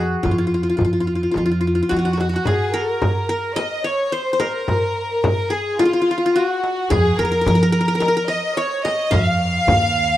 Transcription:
0.00 0.13 F2 medium
0.00 0.29 F#4 medium
0.00 1.07 G#4 medium
0.00 0.17 A#4 medium
0.23 0.69 F2 medium
0.23 0.31 F4 medium
0.23 frame drum medium
0.23 darbuka dum medium
0.31 0.38 F4 soft
0.38 0.46 F4 medium
0.47 0.54 F4 soft
0.54 0.63 F4 medium
0.54 darbuka ka soft
0.63 0.69 F4 medium
0.69 0.76 F4 soft
0.77 1.24 F2 medium
0.77 0.84 F4 soft
0.77 frame drum medium
0.81 0.92 F4 soft
0.81 darbuka dum medium
0.93 1.00 F4 soft
0.93 darbuka ka soft
1.00 1.07 F4 soft
1.07 1.15 F4 soft
1.15 1.23 F4 soft
1.23 1.31 F4 soft
1.31 1.37 F4 soft
1.31 frame drum medium
1.36 1.79 F2 medium
1.36 1.45 F4 soft
1.36 darbuka tek medium
1.46 1.51 F4 medium
1.51 1.60 F4 soft
1.51 darbuka ka soft
1.61 1.67 F4 medium
1.67 1.75 F4 soft
1.75 1.82 F4 medium
1.75 darbuka ka soft
1.83 1.90 F4 soft
1.89 2.35 F2 medium
1.89 1.96 F4 medium
1.89 1.98 F#4 medium
1.89 2.43 F#4 medium
1.89 2.48 F#4 medium
1.89 darbuka tek medium
1.96 2.11 F4 medium
1.96 2.05 F#4 medium
2.05 2.13 F#4 medium
2.05 darbuka ka medium
2.13 2.20 F#4 medium
2.17 2.29 F#4 medium
2.17 darbuka tek medium
2.17 frame drum medium
2.29 2.35 F#4 soft
2.34 3.66 F#4 medium
2.34 darbuka ka medium
2.45 2.75 G#4 medium
2.45 2.76 G#4 medium
2.45 3.68 G#4 medium
2.45 frame drum loud
2.45 darbuka dum medium
2.74 3.29 A#4 medium
2.74 3.58 A#4 medium
2.74 3.29 A#4 medium
3.02 frame drum medium
3.02 darbuka dum loud
3.29 4.39 A#4 medium
3.29 3.60 A#4 medium
3.56 4.51 D#5 loud
3.56 3.85 D#5 medium
3.56 3.88 D#5 medium
3.56 darbuka tek medium
3.56 frame drum medium
3.84 4.13 C#5 medium
3.84 4.18 C#5 medium
3.84 4.16 C#5 medium
3.84 darbuka ka soft
4.12 4.41 C5 medium
4.12 4.33 C5 medium
4.12 4.43 C5 medium
4.33 5.39 C5 medium
4.39 5.51 A#4 medium
4.39 5.55 A#4 medium
4.39 5.25 A#4 medium
4.39 darbuka tek medium
4.39 frame drum medium
4.68 frame drum medium
4.68 darbuka dum medium
5.11 darbuka ka soft
5.24 5.54 A#4 medium
5.24 frame drum loud
5.24 darbuka dum medium
5.50 6.71 G#4 medium
5.50 5.80 G#4 medium
5.50 5.84 G#4 medium
5.79 6.31 F4 medium
5.79 5.85 F4 medium
5.79 6.39 F4 medium
5.79 darbuka tek medium
5.79 frame drum medium
5.85 5.93 F4 medium
5.93 6.01 F4 medium
6.02 6.10 F4 medium
6.11 6.17 F4 medium
6.18 6.25 F4 medium
6.26 6.42 F4 medium
6.36 7.66 F#4 medium
6.36 6.91 F#4 medium
6.36 6.93 F#4 medium
6.64 darbuka tek medium
6.90 7.13 F2 medium
6.90 8.11 G#4 medium
6.90 7.19 G#4 medium
6.90 7.20 G#4 medium
6.90 frame drum loud
6.90 darbuka dum medium
7.19 7.40 F2 medium
7.19 7.73 A#4 loud
7.19 7.24 A#4 medium
7.19 7.73 A#4 medium
7.25 7.31 A#4 medium
7.32 7.41 A#4 medium
7.32 darbuka ka soft
7.41 7.47 A#4 medium
7.46 8.33 F3 medium
7.46 7.55 A#4 medium
7.46 frame drum medium
7.46 darbuka dum medium
7.55 7.62 A#4 medium
7.63 7.72 A#4 medium
7.72 7.80 A#4 medium
7.72 8.31 A#4 medium
7.72 8.26 A#4 medium
7.81 7.88 A#4 medium
7.88 7.95 A#4 medium
7.95 8.00 A#4 medium
8.00 8.08 A#4 medium
8.00 darbuka tek medium
8.00 frame drum medium
8.08 8.16 A#4 medium
8.17 9.30 A#4 medium
8.28 8.84 D#5 medium
8.28 8.59 D#5 medium
8.28 8.58 D#5 medium
8.28 darbuka ka soft
8.57 9.59 C#5 loud
8.57 8.85 C#5 medium
8.85 9.80 D#5 medium
8.85 9.15 D#5 medium
8.85 9.14 D#5 medium
8.85 darbuka tek medium
8.85 frame drum medium
9.11 9.56 F2 medium
9.11 10.17 F5 medium
9.11 10.17 F5 loud
9.11 frame drum loud
9.11 darbuka dum medium
9.41 darbuka ka soft
9.67 10.17 D#2 medium
9.67 darbuka dum loud
9.67 frame drum loud

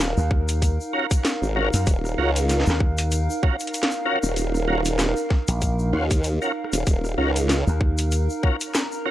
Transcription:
0.00 0.14 D#1 loud
0.00 9.11 D#4 medium
0.00 9.11 A#4 medium
0.00 8.21 F5 medium
0.00 snare loud
0.00 closed hi-hat medium
0.00 shaker medium
0.17 0.77 D#2 loud
0.17 shaker soft
0.31 kick loud
0.49 closed hi-hat medium
0.49 shaker medium
0.62 kick medium
0.62 closed hi-hat medium
0.62 shaker medium
0.81 shaker soft
0.93 1.06 C#4 medium
0.93 1.06 F4 medium
0.93 1.06 F#4 medium
0.93 1.06 A#4 loud
1.11 kick loud
1.11 closed hi-hat medium
1.11 shaker medium
1.25 snare loud
1.25 closed hi-hat medium
1.25 shaker medium
1.42 1.71 G#1 medium
1.42 shaker soft
1.56 1.69 C#4 medium
1.56 1.69 F4 medium
1.56 1.69 F#4 medium
1.56 1.69 A#4 loud
1.56 cross-stick medium
1.73 1.85 F#2 loud
1.73 closed hi-hat medium
1.73 shaker medium
1.86 2.16 D#1 loud
1.86 kick loud
1.86 closed hi-hat medium
1.86 shaker medium
2.05 cross-stick soft
2.05 shaker soft
2.18 2.64 C#2 loud
2.18 2.31 C#4 loud
2.18 2.31 F4 medium
2.18 2.31 F#4 medium
2.18 2.31 A#4 loud
2.36 closed hi-hat medium
2.36 shaker medium
2.49 snare medium
2.49 closed hi-hat medium
2.49 shaker medium
2.60 snare medium
2.66 3.27 D#2 loud
2.66 snare loud
2.66 shaker soft
2.80 kick loud
2.98 closed hi-hat medium
2.98 shaker medium
3.11 closed hi-hat medium
3.11 shaker medium
3.30 shaker soft
3.43 3.56 C#4 medium
3.43 3.56 F4 medium
3.43 3.56 F#4 medium
3.43 3.56 A#4 loud
3.43 kick loud
3.60 closed hi-hat soft
3.60 shaker medium
3.67 closed hi-hat soft
3.74 closed hi-hat medium
3.74 shaker medium
3.83 snare loud
3.83 closed hi-hat medium
3.91 shaker soft
4.05 4.19 C#4 loud
4.05 4.19 F4 medium
4.05 4.19 F#4 medium
4.05 4.19 A#4 loud
4.23 5.14 D#1 loud
4.23 shaker medium
4.36 closed hi-hat medium
4.36 shaker medium
4.54 cross-stick soft
4.54 shaker soft
4.68 4.81 C#4 loud
4.68 4.81 F4 medium
4.68 4.81 F#4 medium
4.68 4.81 A#4 loud
4.85 closed hi-hat medium
4.85 shaker medium
4.99 snare loud
4.99 closed hi-hat medium
4.99 shaker medium
5.17 shaker soft
5.30 kick loud
5.30 snare soft
5.48 5.91 A#1 loud
5.48 closed hi-hat medium
5.48 shaker medium
5.61 kick medium
5.61 closed hi-hat medium
5.61 shaker medium
5.79 shaker soft
5.93 6.39 D#2 loud
5.93 6.06 C#4 medium
5.93 6.06 F4 medium
5.93 6.06 F#4 medium
5.93 6.06 C5 medium
6.11 kick loud
6.11 closed hi-hat medium
6.11 shaker medium
6.24 closed hi-hat medium
6.24 shaker medium
6.42 6.52 C#4 medium
6.42 6.52 F4 medium
6.42 6.52 F#4 medium
6.42 6.52 A#4 loud
6.42 shaker soft
6.64 cross-stick soft
6.73 6.85 D#1 loud
6.73 closed hi-hat medium
6.73 shaker medium
6.87 7.16 D#1 loud
6.87 kick loud
6.87 closed hi-hat medium
6.87 shaker medium
7.05 cross-stick soft
7.05 shaker soft
7.18 7.64 C#2 loud
7.18 7.31 C#4 loud
7.18 7.31 F4 medium
7.18 7.31 F#4 medium
7.18 7.31 A#4 loud
7.36 closed hi-hat medium
7.36 shaker medium
7.49 snare loud
7.49 closed hi-hat medium
7.49 shaker medium
7.67 8.27 D#2 loud
7.67 shaker soft
7.81 kick loud
7.98 closed hi-hat medium
7.98 shaker medium
8.11 closed hi-hat soft
8.11 shaker medium
8.17 9.11 A#5 medium
8.30 shaker soft
8.43 8.56 C#4 medium
8.43 8.56 F4 medium
8.43 8.56 F#4 medium
8.43 8.56 A#4 loud
8.43 kick loud
8.61 closed hi-hat medium
8.61 shaker medium
8.74 snare loud
8.74 closed hi-hat soft
8.74 shaker medium
8.92 shaker soft
9.06 9.11 C#4 loud
9.06 9.11 F4 medium
9.06 9.11 F#4 medium
9.06 9.11 A#4 loud

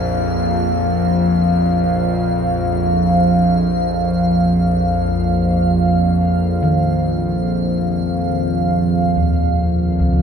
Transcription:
0.00 8.95 A#1 medium
0.00 8.94 F2 medium
0.00 2.79 D#4 medium
0.00 8.95 F5 medium
6.63 10.22 D#3 medium
8.96 10.22 A#1 medium
8.96 10.22 F2 medium
9.17 10.22 D#2 medium
10.00 10.22 C#2 medium

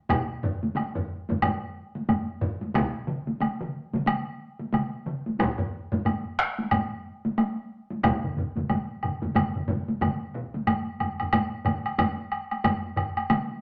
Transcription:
0.09 taiko loud
0.09 taiko low-mid medium
0.09 taiko high medium
0.09 high woodblock medium
0.43 taiko low-mid loud
0.63 taiko high medium
0.76 taiko high medium
0.76 high woodblock soft
0.96 taiko low-mid medium
1.29 taiko low-mid medium
1.29 taiko high medium
1.42 taiko low-mid loud
1.42 taiko high medium
1.42 high woodblock medium
1.95 taiko high medium
2.09 taiko low-mid medium
2.09 taiko high medium
2.09 high woodblock soft
2.42 taiko low-mid loud
2.61 taiko high medium
2.74 taiko loud
2.74 taiko mid medium
2.74 taiko high medium
2.74 high woodblock soft
3.07 taiko mid loud
3.27 taiko high medium
3.40 taiko high medium
3.40 high woodblock soft
3.61 taiko mid medium
3.93 taiko mid loud
3.93 taiko high medium
4.06 taiko mid loud
4.06 taiko high medium
4.06 high woodblock medium
4.59 taiko high medium
4.73 taiko mid loud
4.73 taiko high medium
4.73 high woodblock soft
5.07 taiko mid medium
5.26 taiko high medium
5.39 taiko loud
5.39 taiko high medium
5.39 high woodblock soft
5.59 taiko low-mid loud
5.92 taiko low-mid loud
5.92 taiko high medium
6.05 taiko low-mid medium
6.05 taiko high medium
6.05 high woodblock soft
6.39 taiko rim medium
6.59 taiko high medium
6.71 taiko low-mid loud
6.71 taiko high medium
6.71 high woodblock medium
7.25 taiko high medium
7.38 taiko high medium
7.38 high woodblock soft
7.90 taiko high medium
8.04 taiko loud
8.04 taiko low-mid medium
8.04 taiko mid medium
8.04 taiko high medium
8.04 high woodblock soft
8.24 taiko low-mid medium
8.24 taiko mid medium
8.37 taiko low-mid medium
8.37 taiko mid medium
8.56 taiko low-mid medium
8.56 taiko mid medium
8.56 taiko high medium
8.69 taiko low-mid medium
8.69 taiko mid medium
8.69 taiko high medium
8.69 high woodblock soft
9.03 taiko low-mid medium
9.03 taiko mid medium
9.03 high woodblock soft
9.22 taiko low-mid medium
9.22 taiko mid medium
9.22 taiko high medium
9.35 taiko low-mid medium
9.35 taiko mid loud
9.35 taiko high medium
9.35 high woodblock medium
9.55 taiko low-mid medium
9.55 taiko mid medium
9.68 taiko low-mid loud
9.68 taiko mid medium
9.68 taiko high medium
9.88 taiko high medium
10.01 taiko low-mid loud
10.01 taiko mid loud
10.01 taiko high medium
10.01 high woodblock soft
10.35 taiko medium
10.54 taiko high medium
10.67 taiko low-mid medium
10.67 taiko high medium
10.67 high woodblock soft
10.87 taiko high soft
11.00 taiko low-mid medium
11.00 taiko high medium
11.00 high woodblock soft
11.20 taiko low-mid medium
11.20 taiko high soft
11.20 high woodblock soft
11.33 taiko low-mid medium
11.33 taiko high medium
11.33 high woodblock medium
11.66 taiko low-mid medium
11.66 taiko high medium
11.66 high woodblock soft
11.86 taiko high soft
11.86 high woodblock soft
11.98 taiko low-mid loud
11.98 taiko high medium
11.98 high woodblock medium
12.18 taiko high soft
12.32 high woodblock soft
12.51 taiko high soft
12.51 high woodblock soft
12.64 taiko low-mid loud
12.64 taiko high medium
12.64 high woodblock medium
12.84 taiko high soft
12.97 taiko low-mid medium
12.97 high woodblock soft
13.17 taiko high soft
13.17 high woodblock soft
13.30 taiko mid loud
13.30 taiko high medium
13.30 high woodblock medium
13.50 taiko high soft

